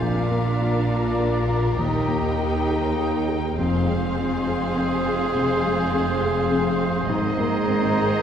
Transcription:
Already playing: F4 F5
0.00 A#1 A#2 D4 F4 A#4 D5 A#5
0.31 A#3
0.61 D4
0.90 F4
1.20 A#4
1.49 F4
1.79 D#2 A#3 D#4 G4 D#5 G5
2.08 A#3
2.39 D#4
2.69 G4
2.99 A#4
3.28 G4
3.57 F1 F2 C4 G#4 C5 F5 C6
3.88 G#3
4.18 C4
4.47 G#4
4.76 C4
5.05 G#4
5.35 C3
5.65 G#3
5.94 C4
6.24 G#4
6.51 C4
6.81 G#4
7.08 G#1 G#2 C4 G#4 A#4 C5 D#5 A#5
7.38 A#3
7.69 C4
7.98 G#4

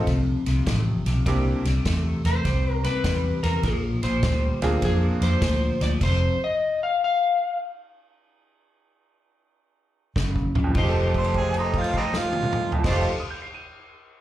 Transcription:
0.07 C2 F2 C3, kick, snare, ride
0.46 C2 F2 C3, snare, ride
0.66 A1 F2 C3, kick, snare, ride
1.06 B1 F2 C3, snare, ride
1.26 C2 C3 G3 A#3 C4 D4 E4 G4, kick, snare, ride
1.65 C2 C3 G3, snare, ride
1.85 E2 C3 A3, kick, snare, ride
2.24 E2 C3 A3 C5, snare, ride
2.45 C2 C3 G3, kick, snare, ride
2.73 A#4
2.84 C3 G3 B4, snare, ride
3.04 E2 C3 G3, kick, snare, ride
3.43 E2 C3 G3 A#4, snare, ride
3.63 A#1 A#2 F3 G#4, kick, snare, ride
4.03 A#1 A#2 F3 C5, snare, ride
4.23 D2 A#2 G3, kick, snare, ride
4.62 D2 A#2 G3 A#3 C4 D4 F4 G#4, snare, ride
4.82 F2 A#2 F3 G#4, kick, snare, ride
5.21 F2 A#2 F3 C5, snare, ride
5.42 D2 A#2 F3, kick, snare, ride
5.81 D2 A#2 F3 D5, snare, ride
6.01 F1 F2 C3 C5, kick, snare, crash, ride
6.44 D#5
6.83 F5
7.04 F5
10.16 F#1 F#2 C#3, kick, snare, high tom
10.36 kick
10.55 A#1 F#2 C#3, floor tom
10.64 F2
10.70 F3
10.74 F1 F3 A3 D#4 G4 C5, kick, crash
10.83 G4
10.89 A4
11.14 C5, kick, crash
11.24 crash
11.34 G#4 C5, kick, crash
11.43 D#5
11.51 G5, crash
11.58 D#4 C6
11.70 D#6, kick, crash
11.78 F4 G6
11.84 crash
11.93 C7, kick, crash
11.97 G3 C4 D#4
12.05 D#7
12.14 F4, snare
12.33 high tom
12.43 mid tom
12.53 mid tom
12.72 F2, floor tom
12.79 F3
12.83 F1 F3 A3 D#4 G4 C5, kick, snare, crash
12.88 A3 D4 F4 G4
12.93 D#5
12.97 A4 G5
13.10 C6
13.20 D#6
13.30 G6
13.42 C7
13.54 D#7

